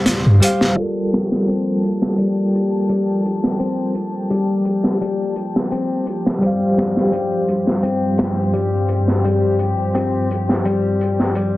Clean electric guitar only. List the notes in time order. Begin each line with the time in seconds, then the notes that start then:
0.77 G3
1.48 C4
2.18 G3
2.89 G3
3.60 C4
4.30 G3
5.01 G3
5.72 C4
6.42 G3
7.12 G3
7.83 C4
8.54 G3
9.24 G3
9.95 C4
10.65 G3
11.36 G3